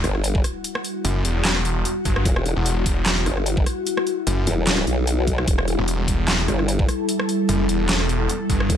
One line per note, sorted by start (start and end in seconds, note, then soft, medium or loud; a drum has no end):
0.00 0.43 G1 loud
0.00 8.77 G3 medium
0.00 8.77 E4 medium
0.00 5.46 F#4 medium
0.00 cross-stick medium
0.00 closed hi-hat medium
0.00 sub drop medium
0.15 cross-stick soft
0.24 closed hi-hat medium
0.35 kick loud
0.44 cross-stick medium
0.44 closed hi-hat medium
0.64 closed hi-hat medium
0.75 cross-stick medium
0.84 closed hi-hat medium
1.05 1.23 F#1 loud
1.05 closed hi-hat medium
1.25 1.84 E1 loud
1.25 open hi-hat medium
1.45 snare loud
1.45 clap loud
1.45 closed hi-hat medium
1.56 cross-stick medium
1.65 closed hi-hat medium
1.85 closed hi-hat medium
2.05 2.24 G1 loud
2.05 kick medium
2.05 closed hi-hat medium
2.16 cross-stick medium
2.25 2.55 E1 loud
2.25 kick loud
2.25 closed hi-hat medium
2.36 cross-stick medium
2.46 closed hi-hat soft
2.56 3.15 E1 loud
2.66 closed hi-hat medium
2.86 kick medium
2.86 open hi-hat medium
3.06 snare loud
3.06 clap medium
3.06 closed hi-hat medium
3.17 3.25 E1 loud
3.26 3.65 G1 loud
3.26 cross-stick medium
3.26 closed hi-hat soft
3.37 cross-stick medium
3.46 closed hi-hat medium
3.57 kick loud
3.66 cross-stick medium
3.66 closed hi-hat medium
3.87 closed hi-hat medium
3.97 cross-stick medium
4.07 closed hi-hat soft
4.27 4.45 F#1 loud
4.27 closed hi-hat medium
4.47 4.86 E1 loud
4.47 open hi-hat medium
4.67 snare loud
4.67 clap medium
4.67 closed hi-hat medium
4.78 cross-stick medium
4.87 5.46 B1 loud
4.87 closed hi-hat soft
5.07 closed hi-hat medium
5.27 kick medium
5.27 closed hi-hat medium
5.38 cross-stick medium
5.48 5.77 E1 medium
5.48 8.77 A4 medium
5.48 kick loud
5.48 closed hi-hat medium
5.58 cross-stick medium
5.68 closed hi-hat soft
5.79 6.37 E1 loud
5.88 closed hi-hat medium
6.08 kick medium
6.08 open hi-hat medium
6.28 snare loud
6.28 clap medium
6.28 closed hi-hat medium
6.39 6.47 E1 loud
6.48 6.87 G1 medium
6.48 cross-stick medium
6.48 closed hi-hat medium
6.59 cross-stick medium
6.68 closed hi-hat medium
6.79 kick loud
6.89 cross-stick medium
6.89 closed hi-hat medium
7.09 closed hi-hat medium
7.20 cross-stick medium
7.29 closed hi-hat medium
7.49 7.68 F#1 loud
7.49 closed hi-hat medium
7.69 8.28 E1 medium
7.69 open hi-hat loud
7.89 snare loud
7.89 clap medium
7.89 closed hi-hat medium
8.00 cross-stick medium
8.09 closed hi-hat medium
8.29 closed hi-hat medium
8.50 8.68 G1 medium
8.50 kick medium
8.50 closed hi-hat medium
8.60 cross-stick medium
8.70 8.77 E1 loud
8.70 kick loud
8.70 closed hi-hat medium